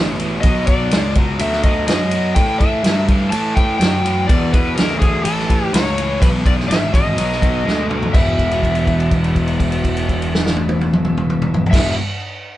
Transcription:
Already playing: A1 E2 C#3
0.19 E2 B2, ride
0.41 B1 D#5, kick, ride
0.45 B2 F#3
0.67 B2 F#3 D5, kick, ride
0.91 C#2 B2 G#3, snare, ride
1.15 B2 F#3, kick, ride
1.39 D2 B2 F#3 E5, ride
1.52 snare
1.63 B2 F#3 D#5, kick, ride
1.88 F#2 B2 G#3 D#5, snare, ride
2.11 B2 F#3, ride
2.35 A2 E3 G5, kick, ride
2.58 A2 E5, kick, ride
2.63 E3
2.84 G2 A2 F#3, snare, ride
3.08 A2 E3, kick, ride
3.30 A2 E3 A5, ride
3.56 A2 E3 G5, kick, ride
3.78 F#2 A2 F#3 G5, ride
3.82 snare
4.05 A2 E3, ride
4.27 E2 B2 D5, kick, ride
4.53 E2 B2 B4, kick, ride
4.76 D2 E2 C#3 A#4, snare, ride
4.99 E2 B2 G#4, kick, ride
5.24 A1 A2 E3 A4, ride
5.40 snare
5.50 A2 E3, kick, ride
5.73 C#2 A2 F#3 C#5, snare, ride
5.97 A2 E3, ride
6.20 B1 E2 B2 B4, kick, ride
6.44 E2 B2 D5, kick, ride
6.60 snare
6.67 G#1 E2 C#3 E5, ride
6.72 snare
6.91 E2 B2 D#5, kick, ride
7.16 B1 B2 F#3, ride
7.32 snare
7.42 B2 F#3, kick, ride
7.65 D2 B2 G#3, snare
7.88 B2 F#3, mid tom
8.02 floor tom
8.13 E1 E2 B2 E3 E5, kick, crash
8.39 kick, crash
8.51 crash
8.63 kick, crash
8.75 crash
8.87 kick, crash
9.00 crash
9.11 kick, crash
9.24 crash
9.36 kick, crash
9.48 crash
9.60 kick, crash
9.72 crash
9.84 kick, crash
9.97 crash
10.09 kick, crash
10.22 crash
10.35 snare
10.46 snare
10.57 high tom
10.69 high tom
10.81 high tom
10.93 mid tom
11.05 mid tom
11.17 mid tom
11.30 mid tom
11.42 mid tom
11.54 floor tom
11.66 floor tom
11.71 E1 E2 B2 E5, kick, crash
11.75 E3, snare

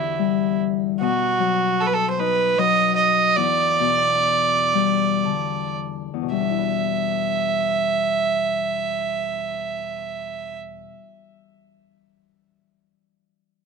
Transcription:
Already playing: E2 D3 B3 E4 G4
0.19 G3
1.01 B2 F#4
1.40 F#3
1.80 A4
1.86 B4
1.94 A4
2.10 C5
2.19 D#4 B4
2.58 F#3 D#5
2.95 D#5
3.36 E2 D5
3.80 B2
4.74 G3
5.24 D3 A5
6.14 E2
6.22 B2
6.31 G3 E5
6.40 D4
6.49 E4
6.58 B4

